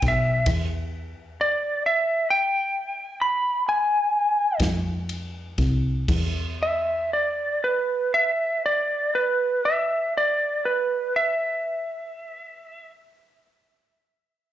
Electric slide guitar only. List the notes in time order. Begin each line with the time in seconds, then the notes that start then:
0.08 E5
1.41 D5
1.86 E5
2.30 G5
3.22 B5
3.69 G#5
6.63 E5
7.13 D5
7.64 B4
8.14 E5
8.66 D5
9.15 B4
9.65 E5
10.17 D5
10.65 B4
11.16 E5